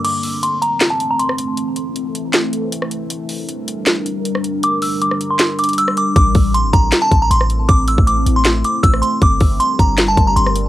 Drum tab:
CC |x-------------------------------|--------------------------------|--------------------------------|--------------------------------|
HH |x---o---x---x---x---x---x---x---|x---x---x---x---x---x---x---x---|x---o---x---x---x---x---x---x---|x---o---x---x---x---xxxxx---x---|
CP |----------------x---------------|----------------x---------------|----------------x---------------|----------------x---------------|
SD |----------------o---------r-----|----------------o---------r-----|----------------o---------r-----|----------r-----o---------r-----|
BD |--------------------------------|--------------------------------|--------------------------------|--------------------------------|

CC |--------------------------------|--------------------------------|--------------------------------|
HH |x---o---x---x---x---x---x---x---|x---x---x---x---x---x---x---x---|x---o---x---x---x---x---x---x---|
CP |----------------x---------------|----------------x---------------|----------------x---------------|
SD |----------------o---------r-----|----------------o---------r-----|----------------o---------r-----|
BD |o---o-------o-------o-----------|o-----o-----------------o-------|o---o-------o-------o-----------|